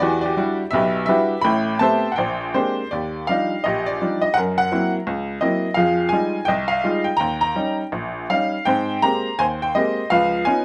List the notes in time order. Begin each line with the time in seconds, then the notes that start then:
0.00 E2 E3 F#4 G4 D5
0.21 D5
0.26 F#4 G4
0.37 G3 D4 E4 F#4
0.71 B1 B2 G4 B4 E5
1.06 G3 D4 E4 F#4 G4 B4 E5
1.41 A1 A2 E5 G5 B5
1.79 A3 B3 C4 G4 C5 E5 A5
2.12 F#5
2.16 A#1 C5 D5 G5
2.54 G#3 A#3 C4 D4 G4 C5
2.91 D#2 G4 D5
3.27 F3 G3 D4 D#4 F5
3.64 A#1 G4 D#5
3.86 D5
4.01 F3 G3 D4 D#4
4.21 D#5
4.34 F#2 A#4 F#5
4.58 F#5
4.72 F#3 A#3 C4 E4
5.07 C#2
5.41 F#3 A#3 C4 E4 D#5
5.74 F2 F3 G#4 F5
6.09 G3 G#3 G#5
6.13 D#4 F4
6.45 C2 D#5 G5
6.68 F5
6.84 G3 G#3 D#4 F4
7.04 G5
7.17 D#2 G5 A#5
7.41 A#5
7.55 G3 C#4 D#4
7.92 A#1
8.30 G3 C#4 D#4 F5
8.65 G#2 C4 C5 G5
9.02 G#3 A#3 C4 G4 A#5
9.39 D#2 C5 G#5
9.62 G5
9.75 G#3 A#3 C4 G4 D#5
10.10 C#2 F3 B4 F5
10.45 B3 C#4 D#4 F4 G#5